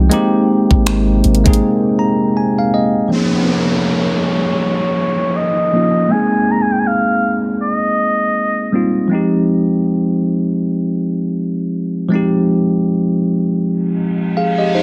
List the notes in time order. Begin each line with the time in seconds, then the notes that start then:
Already playing: F3 G#3 C4 D#4 G4 G5
0.10 C3 G#3 A#3 C4 D#4 G4, closed hi-hat
0.71 G#1, kick
0.86 finger snap, closed hi-hat
1.24 G#1, closed hi-hat
1.35 closed hi-hat
1.44 G#1 G#3 A#3 C4 D#4 G#4, kick, closed hi-hat
1.53 closed hi-hat
1.99 A#5
2.37 G#5
2.59 F5
2.74 D#5
3.08 F3 A#3 C#4, downlifter
3.13 D#4 G#4 C#5
5.36 D#5
5.72 F3 A#3 C#4 D#4 F4
6.08 G#3 A#3 C4 G#5
6.13 D#4 G#4
6.51 A#5
6.62 G#5
6.72 G5
6.79 G#5
6.87 F5
7.62 D#5
8.72 G3 A#3 C4 D#4 F4
9.08 F3 G#3 C4
9.13 D#4 G4
12.09 F3 G#3 C4
12.14 D#4 G4
13.62 reverse cymbal
14.37 G#4 F5
14.58 G4 D#5
14.75 D#4 C5